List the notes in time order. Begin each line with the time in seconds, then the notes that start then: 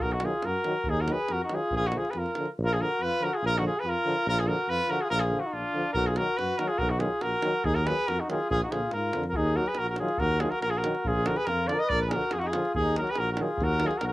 0.00 B1 F#4 A#4, davul low
0.11 D#4 F#4, davul high
0.20 D#3 F#3 F4, davul high
0.25 G#4
0.42 F#2 A#4, davul high
0.48 F#4
0.64 D#3 F#3, davul high
0.84 D#2, davul low
0.89 D#4 G#4
0.97 A#4, davul high
1.01 F#4
1.07 D#3 F#3, davul high
1.12 G#4 B4
1.29 F2 A#4, davul high
1.33 F#4
1.44 D#4 F#4
1.49 D#3 F#3, davul high
1.54 F4 G#4
1.71 A#1, davul low
1.76 F4 G#4
1.81 davul high
1.86 D#4 F#4
1.92 D3 F3, davul high
1.97 F4 G#4
2.05 davul high
2.10 G#4 B4, davul high
2.15 F2 F4 A#4
2.26 davul high
2.35 D3 F3, davul high
2.46 davul high
2.58 A#1
2.64 F4 A#4
2.73 F4 G#4
2.78 D3 F3 A#4
2.85 F#4
3.00 F2 B4
3.05 F4
3.20 D3 F3 A#4
3.25 F#4
3.34 F4 G#4
3.42 A#1 F4
3.46 A#4
3.56 D#4 F#4
3.61 D3 F3
3.67 F4 G#4
3.78 G#4 B4
3.84 F2 F4
3.89 A#4
4.05 D3 F3
4.26 A#1 F4 A#4
4.39 F4 G#4
4.47 D3 F3 F#4 A#4
4.68 F2 F4 B4
4.89 D3 F3 F#4 A#4
5.01 F4 G#4
5.10 A#1 A#4
5.15 F4
5.20 G#4
5.26 F4
5.31 D3 F3
5.40 F#4
5.46 D#4
5.53 A#1 D4 F4
5.74 D3 F3
5.93 B1 F#4 A#4, davul low
6.06 F4 G#4, davul high
6.16 D#3 F#3 F#4 A#4, davul high
6.37 F#2 F#4 B4, davul high
6.58 D#3 F#3 F#4 A#4, davul high
6.67 F4 G#4
6.78 B1 F#4 A#4, davul low
6.90 D#4 F#4, davul high
6.98 D#3 F#3 F4 G#4, davul high
7.21 A#1 F#4 A#4, davul high
7.42 D#3 F#3, davul high
7.64 D#2 D#4 G#4, davul low
7.75 F#4 A#4, davul high
7.85 D#3 F#3 G#4 B4, davul high
8.08 F2 F#4 A#4, davul high
8.20 D#4 F#4
8.29 D#3 F#3 F4 G#4, davul high
8.50 A#1 F4 G#4, davul low
8.62 D#4 F#4, davul high
8.70 A#2 D3 F3 F4 G#4, davul high
8.91 G#2 A#4, davul high
8.96 F4
9.13 F2 D3 F3, davul high
9.24 davul high
9.29 F#4 A#4, davul low
9.36 D#2 D#4 G#4
9.56 D#3 F#3 F#4 A#4
9.66 G#4 B4, davul high
9.75 A#4, davul high
9.79 A#1 F#4
9.89 F#4 A#4
9.96 F#3 G#4, davul high
10.01 D#3 F4
10.08 davul high
10.18 D#2 F#4 A#4, davul low
10.40 D#3 F#3 F4 G#4, davul high
10.50 F#4 A#4, davul high
10.62 A#1 A#4, davul high
10.66 F#4
10.70 F4 G#4
10.76 F#4 A#4
10.84 D#3 F#3, davul high
10.95 davul high
11.05 A#1 F4 G#4, davul low
11.26 D3 F3 F#4 A#4, davul high
11.36 G#4 B4, davul high
11.46 F2 F4 A#4, davul high
11.67 D3 F3 D5, davul high
11.74 A#4
11.79 D#5, davul high
11.84 B4
11.89 A#1 A#4 D5, davul low
12.01 B4, davul high
12.08 G#4 A#4, davul high
12.13 D3 F3 F#4
12.21 davul high
12.31 F2 G#4, davul high
12.37 F4 F#4
12.42 D#4, davul high
12.47 G#4
12.51 D3 F4, davul high
12.55 F3
12.65 davul high
12.75 D#2 G#4, davul low
12.82 D#4
12.96 D#3 F#3 A#4, davul high
13.02 F#4
13.07 B4, davul high
13.12 G#4, davul high
13.18 A#1 F#4 A#4
13.32 F#4 A#4
13.37 D#3 F#3, davul high
13.41 F4 G#4
13.58 D#2, davul low
13.64 F#4 A#4
13.80 D#3 F#3, davul high
13.85 F4 G#4
13.91 F#4, davul high
13.98 A#4, davul high
14.02 B1 F#4
14.07 A#4